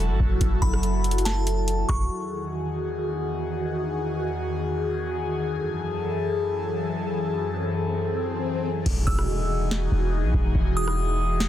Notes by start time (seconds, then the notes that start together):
Already playing: E1 F#3 E4 F#4 A4
0.09 G#1
0.20 F#1, kick
0.41 F#1, kick, closed hi-hat
0.62 F#1 B5, kick
0.74 cross-stick
0.83 closed hi-hat
1.04 closed hi-hat
1.11 closed hi-hat
1.18 closed hi-hat
1.25 A5, snare, closed hi-hat
1.47 closed hi-hat
1.68 closed hi-hat
1.89 F#1 C#6, kick, cross-stick
2.10 E2 D#3 F#4 G#4
5.48 F#2 E3 A4
7.17 swell
8.86 E1 E3 D#4 F#4 G#4, kick, crash, impact
9.07 E1 E6, kick
9.19 cross-stick
9.71 snare
9.92 E1
10.23 B1
10.34 E1, kick
10.55 E1, kick
10.77 D#6
10.88 cross-stick
11.40 snare